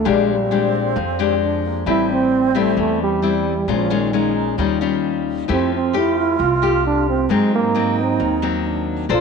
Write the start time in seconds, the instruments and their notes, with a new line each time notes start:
Already playing: trombone A3
0.05 upright bass A#1, nylon-string guitar A#2 G#3 D4 G4, alto flute C4
0.10 trombone G#3
0.33 trombone G3
0.51 nylon-string guitar G#3 D4 G4
0.96 upright bass F2, nylon-string guitar F3
1.19 nylon-string guitar G#3 D4 G4
1.43 alto flute D4
1.66 alto flute A#3
1.86 upright bass A1, nylon-string guitar A2 G3 C4 E4, alto flute C4, trombone E4
2.11 trombone C4
2.55 nylon-string guitar G3 C4 E4, trombone A3
2.77 upright bass E2, nylon-string guitar E3, trombone A3
3.03 trombone G3
3.22 nylon-string guitar G3 C4 E4
3.68 upright bass A#1, nylon-string guitar A#2 G#3 C#4 F4, alto flute C#4
3.73 trombone F3
3.90 nylon-string guitar G#3 C#4 F4
3.95 trombone D#3
4.13 nylon-string guitar G#3 C#4 F4, alto flute D#4
4.58 upright bass D#2, nylon-string guitar D#3 G3 C#4 F4, alto flute C#4
4.81 nylon-string guitar G3 C#4 F4
5.48 upright bass F2, nylon-string guitar F3 A3 E4 G4, alto flute F4
5.52 trombone C4
5.75 trombone C4
5.93 nylon-string guitar A3 G4, trombone E4
6.20 trombone E4
6.39 upright bass C2, nylon-string guitar C3, trombone F4
6.62 nylon-string guitar A3 G4
6.87 trombone D4
7.09 trombone C4
7.29 upright bass G#2, nylon-string guitar G#2 F#3 A#3 C4, trombone G#3, alto flute D#4
7.55 trombone A#3
7.75 nylon-string guitar F#3 A#3 C4
8.02 trombone C4
8.20 upright bass D#2, nylon-string guitar D#3
8.42 nylon-string guitar F#3 A#3 C4
8.66 alto flute D4
9.09 upright bass A#1, nylon-string guitar A#3 D4 A4 C5, alto flute C4, trombone F4